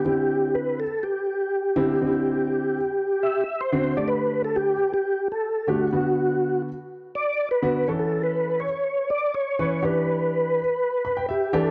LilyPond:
<<
  \new Staff \with { instrumentName = "Tonewheel organ" } { \time 4/4 \key c \lydian \tempo 4 = 123 g'4 b'8 a'8 g'2~ | g'2~ g'8 e''8. c''8. | d''16 b'8. a'16 g'8. g'8. a'8. fis'8~ | fis'4. r4 d''8. b'8. |
cis''16 a'8 b'8. cis''4 d''8 cis''4 | b'2. g'8 a'16 r16 | }
  \new Staff \with { instrumentName = "Upright piano" } { \time 4/4 \key c \lydian << { r1 | r1 | r1 | r1 |
r1 | r2 r8 b''16 g''16 e''4 | } \\ { <d c' e'>4. r2 <d c' e'>8 | <d c' ees' e'>4. r2 <d c' fis'>8 | <d a g'>4. r2 <d a g'>8 | <d b fis'>4. r2 <d b fis'>8 |
<e cis' a'>4. r2 <e cis' b'>8 | <e d' g'>4. r2 <e d' g'>8 | } >> }
>>